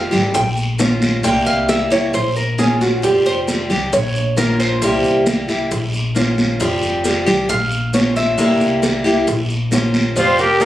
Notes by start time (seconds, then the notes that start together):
Already playing: F3 G3 C4 F5
0.11 G#1 G3 C4 G4, high bongo, low conga, short guiro, maracas
0.34 A#1 G5, muted steel-string acoustic guitar stroke, high bongo, high conga, long guiro, maracas
0.57 high conga, maracas
0.78 A#3 C#4 F4 C5, high bongo, low bongo, high conga, short guiro, maracas
1.02 high bongo, high conga, short guiro, maracas
1.23 C2 C3 G3 A#3 E4 G4 G5, high bongo, high conga, long guiro, maracas
1.46 C2 F5, high bongo, high conga, maracas
1.68 G3 A#3 E4 G4 E5, high bongo, high conga, short guiro, maracas
1.90 C2 G3 A#3 E4 G4 C#5, high bongo, high conga, short guiro, maracas
2.13 A#1 C5, muted steel-string acoustic guitar stroke, high bongo, high conga, long guiro, maracas
2.36 A#4, high conga, maracas
2.58 A#3 C#4 F4 G#4 C5, high bongo, low bongo, high conga, short guiro, maracas
2.81 F#4, high bongo, high conga, short guiro, maracas
3.02 F1 F3 G3 C4 G4, high bongo, high conga, long guiro, maracas
3.26 F1 C5, high bongo, high conga, maracas
3.47 F3 G3 C4 G4, high bongo, high conga, short guiro, maracas
3.70 C2 G3 C4 G4, high bongo, low conga, short guiro, maracas
3.93 A#1 C#5, muted steel-string acoustic guitar stroke, high bongo, high conga, long guiro, maracas
4.15 high conga, maracas
4.36 A#3 C#4 F4 A#4 C5, high bongo, low bongo, high conga, short guiro, maracas
4.60 C5, high bongo, short guiro, maracas
4.82 C2 C3 G3 A#3 E4 G4, high bongo, long guiro, maracas
5.04 C2, high bongo, high conga, maracas
5.26 G3 A#3 E4 G4, high bongo, high conga, short guiro, maracas
5.48 C2 G3 A#3 E4 G4, high bongo, high conga, short guiro, maracas
5.71 A#1, muted steel-string acoustic guitar stroke, high bongo, high conga, long guiro, maracas
5.94 high conga, maracas
6.15 A#3 C#4 F4 C5, high bongo, low bongo, high conga, short guiro, maracas
6.38 high bongo, high conga, short guiro, maracas
6.60 F1 F3 G3 C4 G4, high bongo, high conga, long guiro, maracas
6.82 F1, high bongo, high conga, maracas
7.04 F3 G3 C4 G4, high bongo, high conga, short guiro, maracas
7.26 C2 G3 C4 G4, high bongo, low conga, short guiro, maracas
7.49 A#1 F5, muted steel-string acoustic guitar stroke, high bongo, high conga, long guiro, maracas
7.71 high conga, maracas
7.93 A#3 C#4 F4 C5 C#5, high bongo, low bongo, high conga, short guiro, maracas
8.16 E5, high bongo, high conga, short guiro, maracas
8.38 C2 C3 G3 A#3 E4 G4, high bongo, long guiro, maracas
8.61 C2, high bongo, high conga, maracas
8.82 G3 A#3 E4 G4, high bongo, high conga, short guiro, maracas
9.04 C2 G3 A#3 E4 G4, high bongo, high conga, short guiro, maracas
9.27 A#1, muted steel-string acoustic guitar stroke, high bongo, high conga, long guiro, maracas
9.50 high conga, maracas
9.71 A#3 C#4 F4 C5, high bongo, low bongo, high conga, short guiro, maracas
9.94 high bongo, high conga, short guiro, maracas
10.16 F1 F3 G3 C4 F4 G4 C5, cowbell, high conga, long guiro, maracas
10.38 G3 C4 G4 A#4, high conga, maracas
10.60 F3 G3 C4 A#4 F5, cowbell, high conga, short guiro, maracas